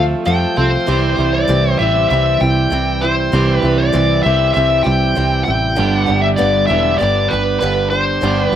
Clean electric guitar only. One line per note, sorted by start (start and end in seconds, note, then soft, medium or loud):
0.00 0.25 F3 medium
0.00 0.88 A3 medium
0.00 0.56 C4 medium
0.26 0.87 F3 medium
0.57 0.88 C4 medium
0.87 1.82 C3 medium
0.87 1.81 E3 medium
0.87 1.81 G3 medium
0.87 1.79 C4 medium
0.87 1.78 G4 medium
1.79 3.32 C3 medium
1.79 3.32 E3 medium
1.79 3.35 G3 medium
1.79 3.31 C4 medium
1.79 3.35 G4 medium
3.33 4.23 C3 medium
3.33 4.24 E3 medium
3.33 4.27 G3 loud
3.33 4.24 C4 medium
3.33 4.25 G4 loud
4.25 5.78 C3 medium
4.25 5.78 E3 medium
4.25 5.78 G3 medium
4.25 5.77 C4 medium
4.25 5.80 G4 medium
5.77 6.72 G2 medium
5.77 6.68 D3 medium
5.77 6.71 G3 medium
5.77 6.70 B3 medium
5.77 6.70 D4 loud
5.77 6.70 G4 loud
6.70 8.22 G2 medium
6.70 8.22 D3 medium
6.70 8.24 G3 medium
6.70 8.22 B3 medium
6.70 8.21 D4 medium
6.70 8.25 G4 medium
8.23 8.56 G2 loud
8.23 8.56 D3 medium
8.23 8.56 G3 medium
8.23 8.56 B3 medium
8.23 8.56 D4 medium
8.23 8.56 G4 loud